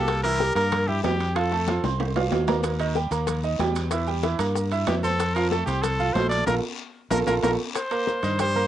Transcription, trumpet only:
0.00 0.23 A4 loud
0.23 0.53 A#4 loud
0.55 0.89 A#4 loud
0.88 1.03 G4 medium
1.03 1.37 G4 medium
1.36 1.84 A4 medium
4.88 4.95 G4 medium
5.03 5.36 A4 medium
5.34 5.49 A#4 medium
5.50 5.65 A4 medium
5.66 5.84 G4 medium
5.82 6.15 A4 loud
6.13 6.29 C5 medium
6.29 6.45 D5 medium
6.46 6.54 A#4 medium
7.11 7.19 A#4 loud
7.27 7.34 A#4 medium
7.42 7.50 A#4 medium
7.76 8.36 C5 medium
8.41 8.67 C5 loud

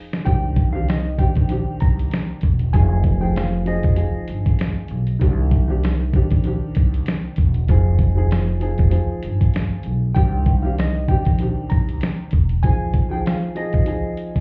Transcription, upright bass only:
0.27 1.32 C2 loud
1.37 1.49 A#1 medium
1.82 2.09 C2 medium
2.43 2.70 E1 loud
2.75 3.80 F1 loud
3.84 3.96 F1 loud
4.29 4.56 G1 medium
4.91 5.18 B1 medium
5.22 6.27 C2 loud
6.32 6.44 A#1 medium
6.77 7.04 C2 medium
7.38 7.65 E1 loud
7.69 8.75 F1 loud
8.79 8.91 F1 loud
9.24 9.51 G1 medium
9.86 10.12 B1 medium
10.17 11.22 C2 loud
11.27 11.39 A#1 medium
11.72 11.98 C2 medium
12.33 12.60 E1 loud

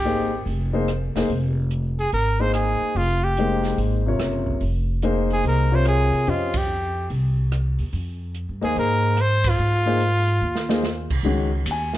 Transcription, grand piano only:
0.05 0.29 A#3 medium
0.05 0.30 D#4 medium
0.05 0.30 G#4 medium
0.05 0.30 C5 medium
0.73 0.86 A#3 medium
0.73 0.86 D#4 medium
0.73 0.87 G#4 medium
0.73 0.87 C5 medium
1.16 1.28 A#3 medium
1.16 1.29 D#4 medium
1.16 1.29 G#4 medium
1.16 1.29 C5 medium
2.39 2.92 A#3 medium
2.39 2.93 D#4 medium
2.39 2.93 G#4 medium
2.39 2.93 C5 medium
3.38 4.01 G#3 soft
3.38 4.01 A#3 medium
3.38 4.01 D#4 medium
3.38 4.02 C5 medium
4.06 4.59 C3 medium
4.06 4.59 F4 soft
4.06 4.60 A#4 soft
4.06 4.60 C#5 medium
5.03 5.66 A#3 medium
5.03 5.67 D#4 medium
5.03 5.67 G#4 medium
5.03 5.67 C5 medium
5.72 6.25 C3 medium
5.72 6.25 F4 medium
5.72 6.25 A#4 medium
5.72 6.25 C#5 medium
6.27 6.52 C#4 medium
6.27 6.52 G4 medium
6.27 6.52 C5 medium
6.27 6.53 D#5 medium
8.61 9.15 A#3 medium
8.61 9.15 D#4 medium
8.61 9.15 G#4 medium
8.61 9.15 C5 medium
9.86 9.99 A#3 medium
9.86 9.99 D#4 medium
9.86 9.99 G#4 medium
9.86 10.00 C5 medium
10.69 10.82 A#3 medium
10.69 10.82 D#4 medium
10.69 10.82 G#4 medium
10.69 10.83 C5 medium
11.24 11.49 D#3 medium
11.24 11.50 G#3 medium
11.24 11.50 C#4 medium
11.24 11.50 F#4 medium
11.71 11.95 G#5 medium

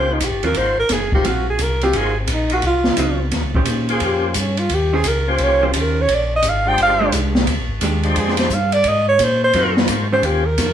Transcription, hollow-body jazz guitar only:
0.44 0.55 F#3 medium
0.44 0.55 C4 medium
0.44 0.55 F4 medium
1.25 1.45 F#3 medium
1.25 1.45 C4 medium
1.25 1.46 F4 medium
1.83 1.94 F#3 medium
1.83 1.94 C4 medium
1.83 1.94 F4 medium
2.99 3.19 F#3 medium
2.99 3.19 C4 medium
2.99 3.19 F4 medium
3.55 4.00 D#3 medium
3.55 4.00 C#4 medium
3.55 4.00 G4 medium
3.55 4.00 C5 medium
4.93 5.04 D#3 medium
4.93 5.05 C#4 medium
4.93 5.05 G4 medium
4.93 5.05 C5 medium
5.63 6.07 D#3 medium
5.63 6.07 C#4 medium
5.63 6.07 G4 medium
5.63 6.08 C5 medium
7.00 7.45 G#3 medium
7.00 7.45 D4 medium
7.00 7.46 G4 medium
7.83 8.35 G#3 medium
7.83 8.35 D4 medium
7.83 8.36 G4 medium
9.55 9.75 F#3 medium
9.55 9.75 C4 medium
9.55 9.76 F4 medium
10.12 10.23 D#3 medium
10.12 10.23 C#4 medium
10.12 10.24 G4 medium
10.12 10.24 C5 medium

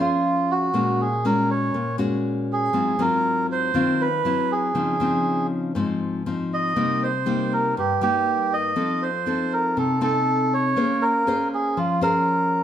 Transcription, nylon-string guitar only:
0.00 0.70 F3 medium
0.00 0.69 C#4 medium
0.00 0.69 G#4 medium
0.00 0.69 C5 medium
0.74 1.71 A#2 medium
0.74 1.06 G#3 soft
0.74 1.06 C#4 soft
0.74 1.06 F#4 medium
1.25 1.74 G#3 soft
1.25 1.74 C#4 medium
1.25 1.74 F#4 medium
1.74 2.72 A#2 medium
1.98 2.70 G#3 medium
1.98 2.69 C#4 medium
1.98 2.70 F#4 medium
2.73 3.71 G#2 medium
2.73 2.95 F#3 medium
2.73 2.95 C4 soft
2.73 2.95 F4 medium
2.99 3.70 F#3 medium
2.99 3.70 C4 medium
2.99 3.71 F4 medium
3.74 4.22 D#3 medium
3.74 4.06 F#3 soft
3.74 4.07 C4 medium
3.74 4.07 F4 medium
4.25 4.73 F#3 soft
4.25 4.73 C4 soft
4.25 4.73 E4 medium
4.75 5.72 C#3 medium
4.75 4.96 F3 soft
4.75 4.96 C4 soft
4.75 4.96 D#4 soft
5.00 5.71 F3 medium
5.00 5.71 C4 medium
5.00 5.71 D#4 medium
5.75 6.73 G#2 medium
5.75 6.21 F3 soft
5.75 6.22 C4 medium
5.75 6.21 D#4 medium
6.26 6.74 F3 soft
6.26 6.74 C4 soft
6.26 6.74 D#4 medium
6.76 7.73 C3 medium
6.76 7.08 G3 soft
6.76 7.08 A#3 medium
6.76 7.08 D#4 medium
7.26 7.75 G3 medium
7.26 7.76 A#3 medium
7.26 7.76 D#4 medium
7.77 8.74 G2 medium
8.01 8.72 G3 medium
8.01 8.72 A#3 medium
8.01 8.73 D#4 medium
8.76 9.73 F3 medium
8.76 9.08 C4 soft
8.76 9.08 D#4 soft
8.76 9.08 A4 soft
9.26 9.97 C4 medium
9.26 9.97 D#4 soft
9.26 9.98 A4 medium
9.77 10.74 C3 medium
10.01 10.72 C4 medium
10.01 10.72 D#4 medium
10.01 10.73 A4 medium
10.76 11.74 A#3 medium
10.76 11.23 C#4 medium
10.76 11.23 G#4 soft
10.76 11.23 C5 medium
11.27 11.98 C#4 medium
11.27 11.98 G#4 medium
11.27 11.98 C5 medium
11.77 12.63 F3 medium
12.01 12.63 C#4 medium
12.01 12.63 G#4 medium
12.01 12.63 C5 medium

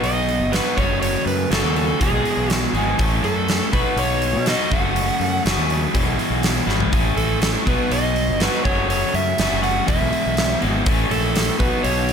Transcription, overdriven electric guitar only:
0.00 0.50 B2 medium
0.00 0.51 F#3 medium
0.00 0.51 B3 medium
0.00 0.52 D#4 medium
0.00 0.52 F#4 medium
0.51 0.75 B2 medium
0.51 0.76 F#3 medium
0.51 0.76 B3 medium
0.51 0.76 D#4 medium
0.51 0.77 F#4 medium
0.76 1.49 F#2 medium
0.76 1.49 C#3 medium
0.76 1.50 F#3 medium
0.76 1.50 A3 medium
0.76 1.50 C#4 medium
0.76 1.51 F#4 medium
1.50 1.99 F#2 medium
1.50 1.99 C#3 medium
1.50 1.99 F#3 medium
1.50 1.99 A3 medium
1.50 2.00 C#4 medium
1.50 2.00 F#4 medium
2.00 2.73 E2 medium
2.00 2.73 B2 medium
2.00 2.73 E3 medium
2.00 2.74 G#3 medium
2.00 2.73 B3 medium
2.00 2.73 G#4 medium
2.74 2.99 E2 medium
2.74 2.98 B2 medium
2.74 2.98 E3 medium
2.74 2.98 G#3 medium
2.74 2.98 B3 medium
2.74 2.97 G#4 medium
2.98 3.71 A2 medium
2.98 3.72 E3 medium
2.98 3.72 A3 medium
2.98 3.72 C#4 medium
2.98 3.73 A4 medium
3.72 4.45 B2 medium
3.72 4.46 F#3 medium
3.72 4.46 B3 medium
3.72 4.46 D#4 medium
3.72 4.47 F#4 medium
4.46 4.70 B2 medium
4.46 4.70 F#3 medium
4.46 4.70 B3 medium
4.46 4.71 D#4 medium
4.46 4.71 F#4 medium
4.71 5.43 F#2 medium
4.71 5.44 C#3 medium
4.71 5.44 F#3 medium
4.71 5.44 A3 medium
4.71 5.45 C#4 medium
4.71 5.45 F#4 medium
5.44 5.92 F#2 medium
5.44 5.93 C#3 medium
5.44 5.93 F#3 medium
5.44 5.94 A3 medium
5.44 5.94 C#4 medium
5.44 5.94 F#4 medium
5.94 6.66 E2 medium
5.94 6.67 B2 medium
5.94 6.67 E3 medium
5.94 6.67 G#3 medium
5.94 6.67 B3 medium
5.94 6.66 E4 medium
6.67 6.92 E2 medium
6.67 6.91 B2 medium
6.67 6.91 E3 medium
6.67 6.92 G#3 medium
6.67 6.91 B3 medium
6.67 6.91 E4 medium
6.92 7.65 A2 medium
6.92 7.65 E3 medium
6.92 7.65 A3 medium
6.92 7.66 C#4 medium
6.92 7.66 E4 medium
7.66 8.38 B2 medium
7.66 8.39 F#3 medium
7.66 8.39 B3 medium
7.66 8.39 D#4 medium
7.66 8.40 F#4 medium
8.39 8.63 B2 medium
8.39 8.63 F#3 medium
8.39 8.64 B3 medium
8.39 8.64 D#4 medium
8.39 8.64 F#4 medium
8.64 9.37 F#2 medium
8.64 9.37 C#3 medium
8.64 9.37 F#3 medium
8.64 9.38 A3 medium
8.64 9.38 C#4 medium
8.64 9.38 F#4 medium
9.38 9.86 F#2 medium
9.38 9.87 C#3 medium
9.38 9.87 F#3 medium
9.38 9.87 A3 medium
9.38 9.88 C#4 medium
9.38 9.88 F#4 medium
9.87 10.59 E2 medium
9.87 10.60 B2 medium
9.87 10.60 E3 medium
9.87 10.61 G#3 medium
9.87 10.60 B3 medium
9.87 10.60 E4 medium
10.61 10.86 E2 medium
10.61 10.85 B2 medium
10.61 10.85 E3 medium
10.61 10.85 G#3 medium
10.61 10.85 B3 medium
10.61 10.84 E4 medium
10.86 11.58 A2 medium
10.86 11.58 E3 medium
10.86 11.59 A3 medium
10.86 11.59 C#4 medium
10.86 11.59 E4 medium
11.59 12.13 B2 medium
11.59 12.13 F#3 medium
11.59 12.13 B3 medium
11.59 12.13 D#4 medium
11.59 12.13 F#4 medium

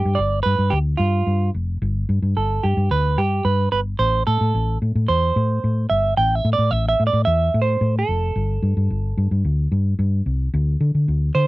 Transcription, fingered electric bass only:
0.05 0.16 G2 loud
0.19 0.40 G1 loud
0.46 0.57 G2 medium
0.59 0.70 G2 medium
0.72 0.94 D2 medium
0.99 1.21 G2 loud
1.27 1.49 G2 loud
1.54 1.76 F1 medium
1.82 2.03 G1 loud
2.09 2.20 G2 loud
2.22 2.33 G2 medium
2.37 2.58 G1 loud
2.64 2.75 G2 medium
2.77 2.88 G2 medium
2.91 3.18 D2 medium
3.18 3.40 G2 loud
3.45 3.67 G2 medium
3.72 3.94 G1 medium
3.99 4.21 A1 loud
4.27 4.38 A2 loud
4.41 4.52 A2 loud
4.54 4.76 A1 medium
4.82 4.92 A2 medium
4.95 5.06 A2 medium
5.09 5.30 E2 medium
5.36 5.58 A2 loud
5.64 5.85 A2 medium
5.91 6.12 G1 medium
6.17 6.39 A1 loud
6.45 6.55 A2 loud
6.58 6.69 A2 loud
6.72 6.93 A1 loud
7.00 7.10 A2 medium
7.13 7.24 A2 loud
7.27 7.48 E2 medium
7.54 7.76 A2 loud
7.81 8.03 A2 loud
8.09 8.30 F1 medium
8.36 8.57 G1 loud
8.63 8.73 G2 medium
8.77 8.87 G2 medium
8.90 9.12 G1 medium
9.17 9.28 G2 loud
9.31 9.42 G2 medium
9.45 9.66 D2 medium
9.72 9.93 G2 loud
9.99 10.20 G2 loud
10.26 10.48 C2 medium
10.54 10.75 D2 loud
10.81 10.91 D3 loud
10.95 11.05 D3 medium
11.08 11.30 D2 loud
11.35 11.46 D3 loud

